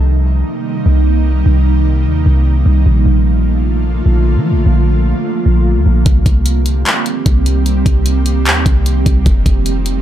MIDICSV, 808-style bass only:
0, 0, Header, 1, 2, 480
1, 0, Start_track
1, 0, Tempo, 400000
1, 1512, Time_signature, 4, 2, 24, 8
1, 12023, End_track
2, 0, Start_track
2, 0, Title_t, "808-style bass"
2, 0, Program_c, 0, 38
2, 0, Note_on_c, 0, 36, 112
2, 523, Note_off_c, 0, 36, 0
2, 1032, Note_on_c, 0, 36, 106
2, 1723, Note_off_c, 0, 36, 0
2, 1752, Note_on_c, 0, 36, 112
2, 2473, Note_on_c, 0, 39, 97
2, 2491, Note_off_c, 0, 36, 0
2, 2701, Note_off_c, 0, 39, 0
2, 2713, Note_on_c, 0, 36, 103
2, 3173, Note_off_c, 0, 36, 0
2, 3191, Note_on_c, 0, 36, 105
2, 3422, Note_off_c, 0, 36, 0
2, 3433, Note_on_c, 0, 34, 117
2, 3663, Note_off_c, 0, 34, 0
2, 3671, Note_on_c, 0, 34, 109
2, 4824, Note_off_c, 0, 34, 0
2, 4871, Note_on_c, 0, 34, 104
2, 5232, Note_on_c, 0, 53, 96
2, 5250, Note_off_c, 0, 34, 0
2, 5411, Note_on_c, 0, 34, 100
2, 5429, Note_off_c, 0, 53, 0
2, 5583, Note_off_c, 0, 34, 0
2, 5593, Note_on_c, 0, 34, 108
2, 6168, Note_off_c, 0, 34, 0
2, 6552, Note_on_c, 0, 34, 105
2, 6913, Note_on_c, 0, 38, 98
2, 6931, Note_off_c, 0, 34, 0
2, 7027, Note_off_c, 0, 38, 0
2, 7032, Note_on_c, 0, 34, 102
2, 7263, Note_off_c, 0, 34, 0
2, 7271, Note_on_c, 0, 36, 114
2, 7502, Note_off_c, 0, 36, 0
2, 7511, Note_on_c, 0, 36, 107
2, 8203, Note_off_c, 0, 36, 0
2, 8712, Note_on_c, 0, 36, 108
2, 9403, Note_off_c, 0, 36, 0
2, 9430, Note_on_c, 0, 36, 108
2, 10153, Note_on_c, 0, 39, 96
2, 10171, Note_off_c, 0, 36, 0
2, 10381, Note_off_c, 0, 39, 0
2, 10391, Note_on_c, 0, 36, 105
2, 10852, Note_off_c, 0, 36, 0
2, 10873, Note_on_c, 0, 36, 101
2, 11103, Note_off_c, 0, 36, 0
2, 11112, Note_on_c, 0, 29, 114
2, 11343, Note_off_c, 0, 29, 0
2, 11351, Note_on_c, 0, 29, 107
2, 12023, Note_off_c, 0, 29, 0
2, 12023, End_track
0, 0, End_of_file